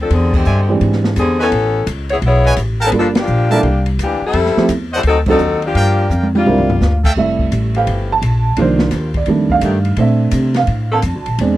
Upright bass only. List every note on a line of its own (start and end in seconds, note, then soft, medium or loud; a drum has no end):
0.10 0.45 E2 medium
0.46 0.80 G2 medium
0.81 1.16 G#2 medium
1.16 1.51 E2 medium
1.51 1.86 A1 medium
1.87 2.21 C#2 loud
2.22 2.56 B1 medium
2.57 2.92 A1 medium
2.92 3.27 G1 medium
3.28 3.62 A#1 medium
3.63 3.98 C2 medium
3.99 4.20 D2 medium
4.21 muted upright bass stroke soft
4.33 4.55 F2 medium
4.57 muted upright bass stroke soft
4.69 5.03 E2 medium
5.03 5.38 D2 medium
5.39 5.74 D#2 medium
5.75 6.09 G2 medium
6.10 6.44 F2 medium
6.45 6.80 C2 medium
6.81 7.15 D2 medium
7.16 7.51 F1 medium
7.52 7.86 A1 medium
7.87 8.21 G1 medium
8.22 8.56 A#1 medium
8.57 8.91 C2 medium
8.91 9.26 D#2 medium
9.27 9.61 F2 medium
9.62 9.96 G2 medium
9.97 10.32 A#2 medium
10.32 10.67 C3 medium
10.67 11.02 A2 medium
11.03 11.15 F2 medium
11.15 11.26 D2 medium
11.27 11.38 A#1 medium
11.38 11.57 E2 medium